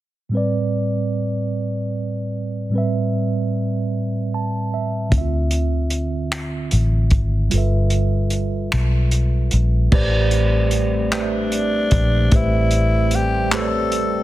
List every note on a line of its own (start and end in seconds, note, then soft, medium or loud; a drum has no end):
0.29 2.67 A2 medium
0.29 2.68 G3 medium
0.33 2.69 C4 medium
0.33 2.69 B4 medium
0.33 2.70 D5 medium
2.70 5.07 A2 medium
2.70 5.08 G3 medium
2.74 5.09 C4 medium
2.74 5.10 B4 medium
2.78 4.73 E5 medium
4.34 4.70 A5 medium
4.74 5.10 E5 medium
5.09 6.68 D2 medium
5.09 7.47 D3 medium
5.09 7.48 C4 medium
5.09 kick medium
5.09 closed hi-hat medium
5.15 5.20 E4 soft
5.15 7.51 E5 medium
5.21 7.50 F4 medium
5.51 closed hi-hat soft
5.90 closed hi-hat soft
6.32 finger snap medium
6.32 closed hi-hat medium
6.71 7.08 A1 medium
6.71 closed hi-hat soft
7.10 7.48 G#1 medium
7.10 kick medium
7.10 closed hi-hat soft
7.50 8.69 G1 medium
7.50 9.87 G3 medium
7.50 9.88 F4 medium
7.50 closed hi-hat medium
7.54 9.89 A4 medium
7.54 9.90 B4 medium
7.54 9.91 E5 medium
7.90 closed hi-hat soft
8.30 closed hi-hat soft
8.72 9.49 B1 medium
8.72 finger snap medium
8.72 closed hi-hat medium
9.11 closed hi-hat soft
9.51 9.89 A#1 medium
9.51 closed hi-hat soft
9.90 11.88 A1 medium
9.90 14.23 G3 medium
9.90 14.23 A3 medium
9.90 10.75 A3 medium
9.90 14.23 C4 medium
9.90 10.76 G4 medium
9.90 10.76 B4 medium
9.90 10.76 C5 medium
9.90 kick loud
9.90 crash medium
9.95 10.77 D5 loud
10.31 closed hi-hat soft
10.71 closed hi-hat soft
11.12 11.95 A3 medium
11.12 11.96 B4 medium
11.12 11.97 C5 medium
11.12 11.20 D5 medium
11.12 clap loud
11.12 closed hi-hat medium
11.18 12.38 D4 medium
11.22 12.00 E5 medium
11.52 closed hi-hat soft
11.91 12.28 A#1 medium
11.91 kick medium
11.91 closed hi-hat soft
12.32 14.23 A1 medium
12.32 13.15 A3 medium
12.32 13.16 G4 medium
12.32 13.16 B4 medium
12.32 13.17 C5 medium
12.32 kick loud
12.32 closed hi-hat medium
12.36 13.16 E4 medium
12.36 13.17 E5 medium
12.71 closed hi-hat soft
13.11 13.56 G4 medium
13.11 closed hi-hat soft
13.51 14.23 A3 medium
13.51 14.23 G4 medium
13.51 14.23 A4 medium
13.51 14.23 B4 medium
13.51 14.23 C5 medium
13.51 clap loud
13.51 closed hi-hat medium
13.55 13.60 C#5 medium
13.61 14.23 D5 medium
13.92 closed hi-hat medium